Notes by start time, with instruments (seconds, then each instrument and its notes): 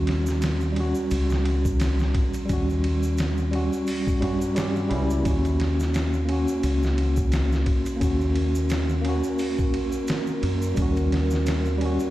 Already playing: fingered electric bass D#2, tine electric piano G3 C#4 F#4
0.07 snare, ride
0.26 snare, shaker
0.42 snare, ride, shaker
0.61 shaker
0.73 tine electric piano G3, ride
0.77 tine electric piano C#4 F#4
0.95 shaker
1.11 fingered electric bass C#2, ride, shaker
1.30 snare, shaker
1.45 ride
1.65 kick, shaker
1.80 snare, ride, shaker
1.99 snare, shaker
2.15 kick, ride
2.34 ride, shaker
2.45 tine electric piano G3, shaker
2.49 fingered electric bass D#2, tine electric piano C#4 F#4, kick, ride
2.70 shaker
2.84 ride
3.03 shaker
3.17 snare, ride, shaker
3.37 shaker
3.51 tine electric piano G3 C#4, ride
3.55 tine electric piano F#4
3.73 shaker
3.87 open hi-hat, shaker
4.07 kick, shaker
4.20 fingered electric bass G2, tine electric piano G3 C#4 F#4, ride
4.41 shaker
4.55 tine electric piano G3 C#4 G4, snare, ride, shaker
4.76 shaker
4.89 fingered electric bass C#2, tine electric piano G3 C#4 E4, ride
5.10 shaker
5.22 fingered electric bass D#2, tine electric piano A#3, ambient pad A#4, kick, ride, shaker
5.26 tine electric piano C#4 F#4
5.45 ride, shaker
5.60 snare, ride
5.80 snare, shaker
5.94 snare, ride, shaker
6.13 shaker
6.25 tine electric piano A#3, ride
6.29 tine electric piano C#4 F#4
6.48 shaker
6.63 fingered electric bass C#2, ride, shaker
6.83 snare, shaker
6.98 ride
7.17 kick, shaker
7.32 snare, ride, shaker
7.52 snare, shaker
7.66 kick, ride
7.86 ride, shaker
7.97 tine electric piano A#3 C#4
8.01 fingered electric bass D#2, tine electric piano F#4, kick, ride, shaker
8.21 shaker
8.36 ride
8.55 shaker
8.69 snare, ride, shaker
8.89 shaker
9.01 tine electric piano A#3 C#4, ride
9.09 tine electric piano F#4
9.24 shaker
9.38 open hi-hat, shaker
9.58 kick, shaker
9.74 ride
9.92 shaker
10.07 snare, ride, shaker
10.27 shaker
10.43 fingered electric bass F#2, ride
10.62 shaker
10.75 fingered electric bass D#2, tine electric piano G3 C#4, kick, ride, shaker
10.82 tine electric piano F#4
10.96 ride, shaker
11.12 snare, ride
11.31 snare, shaker
11.46 snare, ride, shaker
11.65 shaker
11.78 tine electric piano G3 C#4, ride
11.85 tine electric piano F#4
11.99 shaker